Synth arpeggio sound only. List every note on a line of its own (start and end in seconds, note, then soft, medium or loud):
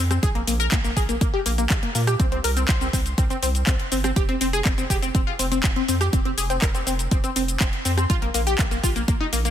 0.11 0.17 C4 medium
0.23 0.29 G#4 loud
0.35 0.41 A#3 medium
0.47 0.54 A#3 medium
0.60 0.66 A#4 loud
0.72 0.78 A#3 medium
0.84 0.91 A#3 medium
0.97 1.03 G#4 medium
1.09 1.15 A#3 medium
1.21 1.28 A#3 medium
1.34 1.40 G4 medium
1.46 1.52 A#3 medium
1.58 1.64 A#3 medium
1.83 1.89 A#3 medium
1.95 2.01 A#3 medium
2.07 2.14 G4 loud
2.20 2.26 C4 medium
2.32 2.38 C4 medium
2.44 2.50 A#4 medium
2.57 2.63 C4 medium
2.69 2.75 C5 medium
2.81 2.87 C4 medium
2.93 3.00 C4 medium
3.18 3.24 C4 medium
3.30 3.37 C4 medium
3.43 3.49 C4 medium
3.67 3.73 C4 medium
3.92 3.98 C4 medium
4.04 4.10 C4 medium
4.16 4.23 G4 loud
4.29 4.35 C4 medium
4.41 4.47 C4 medium
4.53 4.60 G#4 loud
4.66 4.72 C4 medium
4.78 4.84 C4 medium
4.90 4.96 G4 loud
5.02 5.09 C4 medium
5.15 5.21 C4 medium
5.27 5.33 F4 medium
5.39 5.46 C4 medium
5.52 5.58 C4 medium
5.76 5.82 C4 medium
5.88 5.95 C4 medium
6.01 6.07 G4 loud
6.13 6.19 C4 medium
6.25 6.32 C4 medium
6.38 6.44 G#4 medium
6.50 6.56 C4 medium
6.62 6.69 A#4 loud
6.75 6.81 C4 medium
6.87 6.93 C4 medium
7.11 7.18 C4 medium
7.24 7.30 C4 medium
7.36 7.42 C4 medium
7.61 7.67 C4 medium
7.85 7.91 C4 medium
7.98 8.04 C4 medium
8.10 8.16 F4 loud
8.22 8.28 A#3 medium
8.34 8.41 A#3 medium
8.47 8.53 G4 medium
8.59 8.65 A#3 medium
8.71 8.78 A#3 medium
8.84 8.90 F4 loud
8.96 9.02 A#3 medium
9.08 9.14 A#3 medium
9.20 9.27 D#4 medium
9.33 9.39 A#3 medium
9.45 9.51 A#3 medium